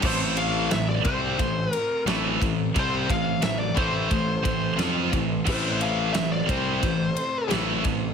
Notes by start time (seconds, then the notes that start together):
0.01 A1 A2 C3 E3 A3 C4 A4 C5, kick, crash
0.06 C5
0.37 F5, ride
0.71 A1 A2 E3 E5, snare, ride
0.89 D5
1.05 C2 C3 G3 C4 C5, kick, ride
1.39 A1 A2 E3, kick, ride
1.73 A#4, ride
2.06 A1 A2 E3 A3, snare, ride
2.41 A1 A2 E3, kick, ride
2.75 C2 C3 G3 C4, kick, ride
2.79 C5
3.10 A1 A2 E3 F5, kick, ride
3.42 A1 A2 E3 E5, snare, ride
3.58 D5
3.76 A1 A2 E3 A3 C5, kick, ride
4.10 A1 A2 E3, kick, ride
4.42 A1 A2 E3, kick, ride
4.76 F2 F3 C4 F4, snare, ride
5.11 A1 A2 E3, kick, ride
5.45 A1 A2 E3 A3, kick, crash
5.50 C5
5.81 F5, ride
6.13 A1 A2 E3 E5, snare, ride
6.32 D5
6.48 C2 C3 G3 C4 C5, kick, ride
6.82 A1 A2 E3, kick, ride
7.17 ride
7.50 A1 A2 E3 A3, snare, ride
7.84 A1 A2 E3, kick, ride